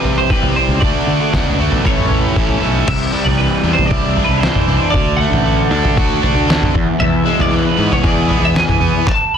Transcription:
Already playing: overdriven electric guitar C3 E3 G3 C4 G4, clean electric guitar B4
0.04 floor tom
0.18 clean electric guitar C5
0.30 overdriven electric guitar E3 G3 C4 G4, clean electric guitar B4, kick
0.43 floor tom
0.56 overdriven electric guitar G3 C4 G4, clean electric guitar C5
0.68 fingered electric bass C#2
0.80 fingered electric bass D2, overdriven electric guitar D3 A3, clean electric guitar D5, kick, floor tom
0.85 overdriven electric guitar D4 F#4
1.07 fingered electric bass D3
1.33 fingered electric bass C#2, overdriven electric guitar D3 A3 D4 F#4, kick, snare, floor tom, mid tom
1.59 fingered electric bass D2, overdriven electric guitar A3 D4 F#4
1.72 fingered electric bass B1, floor tom
1.84 fingered electric bass A1, overdriven electric guitar A2 E3 A3 C#4 E4, clean electric guitar C#5, kick
1.98 mid tom
2.11 floor tom
2.36 fingered electric bass A1, overdriven electric guitar E3 A3 C#4 E4, kick
2.49 floor tom
2.60 fingered electric bass B1, overdriven electric guitar A3 C#4 E4
2.88 fingered electric bass C2, overdriven electric guitar C3, clean electric guitar E5, kick, floor tom, crash
3.13 overdriven electric guitar G3
3.25 fingered electric bass C2, clean electric guitar D5, floor tom
3.38 overdriven electric guitar E3, clean electric guitar B4
3.64 fingered electric bass E2, overdriven electric guitar D4
3.73 clean electric guitar C5
3.79 floor tom
3.85 clean electric guitar D5
3.90 fingered electric bass C2, overdriven electric guitar E4, kick
4.17 overdriven electric guitar D4, floor tom
4.24 clean electric guitar B4
4.29 fingered electric bass C2
4.37 clean electric guitar C5
4.43 overdriven electric guitar E3, snare
4.55 floor tom, mid tom
4.68 fingered electric bass C2, overdriven electric guitar D4
4.90 fingered electric bass D2, clean electric guitar D5, kick, floor tom
4.96 overdriven electric guitar D3
5.17 overdriven electric guitar A3, clean electric guitar F#5
5.31 fingered electric bass A1, floor tom
5.45 overdriven electric guitar D3
5.70 fingered electric bass D2, overdriven electric guitar D4
5.85 floor tom
5.97 fingered electric bass D2, overdriven electric guitar F#4, kick
6.22 overdriven electric guitar D4, floor tom
6.35 fingered electric bass D2
6.48 overdriven electric guitar D3, snare
6.63 floor tom, mid tom
6.75 overdriven electric guitar E2, fingered electric bass E2, kick
7.00 fingered electric bass E2, overdriven electric guitar E2, clean electric guitar E5, floor tom
7.25 overdriven electric guitar G#3
7.39 fingered electric bass E2, clean electric guitar D5, floor tom
7.51 overdriven electric guitar E3, clean electric guitar B4
7.77 fingered electric bass G#2, overdriven electric guitar B3
7.92 clean electric guitar C#5, floor tom
8.03 fingered electric bass E2, overdriven electric guitar G#4, clean electric guitar D5, kick
8.28 overdriven electric guitar B3, floor tom
8.42 fingered electric bass E2, clean electric guitar E5
8.55 overdriven electric guitar E3, clean electric guitar G#5, snare
8.69 floor tom, mid tom
8.80 fingered electric bass E2, overdriven electric guitar B3
9.07 clean electric guitar A5, kick, clap
9.34 clean electric guitar B5

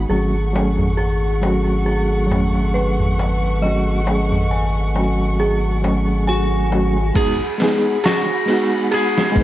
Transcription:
0.09 analog synth bass G#1, reed electric piano F#3 A3 C#4, violin section A3 F#5 C#6, synth bell G#4, darbuka tek
0.13 reed electric piano F#4
0.34 darbuka tek
0.53 reed electric piano F#3 A3 C#4, darbuka tek
0.58 reed electric piano G#4
0.78 darbuka tek, darbuka dum
0.97 synth bell G#4, darbuka tek
1.23 darbuka tek
1.42 reed electric piano F#3 A3 C#4, darbuka tek
1.46 reed electric piano F#4
1.67 darbuka tek
1.86 synth bell G#4, darbuka tek
2.11 darbuka tek
2.27 reed electric piano F#3 A3, darbuka dum
2.31 reed electric piano C#4, darbuka tek
2.55 darbuka tek
2.74 synth bell B4, darbuka tek
2.99 darbuka tek, darbuka dum
3.19 darbuka tek
3.43 darbuka tek
3.62 reed electric piano F#3 A3 C#4, synth bell D#5, darbuka tek
3.66 reed electric piano F#4
3.87 darbuka tek
4.06 reed electric piano F#3 A3 C#4, darbuka tek
4.11 reed electric piano G#4
4.32 darbuka tek, darbuka dum
4.51 synth bell G#5, darbuka tek
4.77 darbuka tek
4.94 reed electric piano F#3 A3 C#4, darbuka tek
4.99 reed electric piano F#4
5.21 darbuka tek
5.40 synth bell G#4, darbuka tek
5.64 darbuka tek
5.82 reed electric piano F#3 A3 C#4, darbuka tek
6.07 darbuka tek
6.27 electric slide guitar F#4, synth bell G#5, darbuka tek
6.52 darbuka tek
6.70 reed electric piano F#3 A3 C#4, darbuka tek
6.75 reed electric piano F#4
6.97 darbuka tek
7.14 reed electric piano G#3 B3 D#4, violin section G#4 F#5 B5, synth bell G#4, electric slide guitar G#4, kick, ride
7.19 reed electric piano F#4
7.58 reed electric piano G#3 B3 D#4, snare, ride
7.63 reed electric piano G#4
8.04 electric slide guitar F#4, synth bell G#4, snare, ride
8.46 reed electric piano G#3 B3 D#4, ride
8.51 reed electric piano F#4
8.91 synth bell G#4, electric slide guitar G#4, ride
9.18 snare
9.32 reed electric piano G#3 B3, kick, ride
9.36 analog synth bass G#1, reed electric piano D#4

